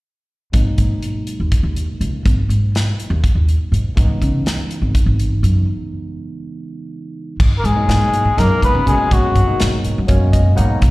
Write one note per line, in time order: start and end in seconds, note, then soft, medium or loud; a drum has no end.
0.52 0.64 G#1 medium
0.52 3.92 B2 soft
0.52 3.93 F#3 soft
0.52 3.93 G#3 soft
0.52 3.93 A#3 soft
0.52 3.93 D#4 medium
0.52 kick medium
0.52 closed hi-hat medium
0.78 0.99 G#2 medium
0.78 kick medium
0.78 closed hi-hat soft
1.03 closed hi-hat medium
1.27 closed hi-hat soft
1.40 1.50 D#2 medium
1.52 muted upright bass stroke soft
1.52 kick medium
1.52 closed hi-hat medium
1.63 1.85 D#2 medium
1.76 closed hi-hat soft
2.01 2.22 C#2 medium
2.01 closed hi-hat soft
2.26 2.36 G#1 medium
2.26 kick medium
2.26 closed hi-hat medium
2.49 2.70 G#2 medium
2.49 closed hi-hat soft
2.75 snare medium
2.75 closed hi-hat medium
3.00 closed hi-hat soft
3.10 3.21 D#2 medium
3.24 muted upright bass stroke soft
3.24 kick medium
3.24 closed hi-hat medium
3.35 3.56 D#2 medium
3.49 closed hi-hat soft
3.72 3.93 G#2 medium
3.72 closed hi-hat soft
3.95 4.07 C#2 medium
3.95 7.35 C#3 medium
3.95 7.35 E3 soft
3.95 7.35 G#3 soft
3.95 7.36 B3 soft
3.95 7.36 D#4 medium
3.95 kick medium
3.95 closed hi-hat medium
4.22 4.42 C#3 medium
4.22 kick medium
4.22 closed hi-hat soft
4.46 snare medium
4.46 closed hi-hat medium
4.71 closed hi-hat soft
4.82 4.93 G#1 medium
4.95 muted upright bass stroke soft
4.95 kick medium
4.95 closed hi-hat medium
5.06 5.28 G#1 medium
5.20 closed hi-hat soft
5.43 5.64 F#2 medium
5.43 closed hi-hat medium
7.40 7.50 G#2 medium
7.40 kick medium
7.40 crash medium
7.58 7.67 A#3 soft
7.58 7.67 A#4 medium
7.64 7.85 G#2 medium
7.64 8.42 G#3 medium
7.64 8.41 G#4 medium
7.64 closed hi-hat soft
7.75 8.30 B2 medium
7.75 8.30 F#3 medium
7.75 8.31 G#3 medium
7.75 8.31 A#3 medium
7.75 8.31 D#4 medium
7.89 8.10 G#2 medium
7.89 snare medium
7.89 closed hi-hat medium
8.14 closed hi-hat soft
8.25 8.36 G#2 medium
8.37 8.48 F#2 medium
8.37 8.80 B2 medium
8.37 8.81 F#3 medium
8.37 8.81 G#3 medium
8.37 8.81 A#3 medium
8.37 8.64 A#3 medium
8.37 8.81 D#4 medium
8.37 8.63 A#4 medium
8.37 snare soft
8.37 closed hi-hat medium
8.62 8.73 G#2 medium
8.62 8.87 B3 medium
8.62 8.86 B4 medium
8.62 kick medium
8.62 closed hi-hat medium
8.75 8.95 C#3 medium
8.85 9.40 B2 medium
8.85 9.40 F#3 medium
8.85 9.40 G#3 medium
8.85 9.40 A#3 medium
8.85 9.41 C#4 medium
8.85 9.15 G#4 medium
8.85 kick medium
8.85 closed hi-hat medium
8.90 9.16 G#3 medium
9.11 9.35 G#2 medium
9.11 9.68 F#3 medium
9.11 9.67 F#4 medium
9.11 kick medium
9.11 closed hi-hat medium
9.35 9.46 F#2 medium
9.35 kick medium
9.35 closed hi-hat medium
9.46 10.01 B2 medium
9.46 10.01 F#3 medium
9.46 10.01 G#3 medium
9.46 10.01 A#3 medium
9.46 10.02 D#4 medium
9.46 muted upright bass stroke soft
9.60 9.82 G#2 medium
9.60 snare medium
9.60 closed hi-hat medium
9.84 muted upright bass stroke soft
9.84 closed hi-hat medium
9.98 10.08 F#2 medium
10.07 10.51 F#2 medium
10.07 10.51 B2 medium
10.07 10.51 F#3 medium
10.07 10.52 G#3 medium
10.07 10.52 A#3 medium
10.07 10.52 C#4 medium
10.07 kick medium
10.07 closed hi-hat medium
10.32 10.56 D#5 medium
10.32 kick medium
10.32 closed hi-hat medium
10.56 10.79 G#2 medium
10.56 10.81 B2 medium
10.56 10.81 F#3 medium
10.56 10.82 G#3 medium
10.56 10.82 A#3 medium
10.56 10.82 D#4 medium
10.56 10.80 F#5 medium
10.56 closed hi-hat medium
10.82 10.91 C#2 medium
10.82 kick medium
10.82 closed hi-hat medium